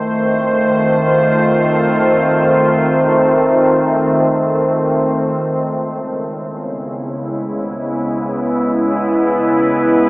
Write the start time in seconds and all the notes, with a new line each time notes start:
Already playing: F2 D#3 A3 C4 F4 C5
5.32 C#2 C#3
5.57 G#3
5.92 B3
6.02 E4
7.27 B4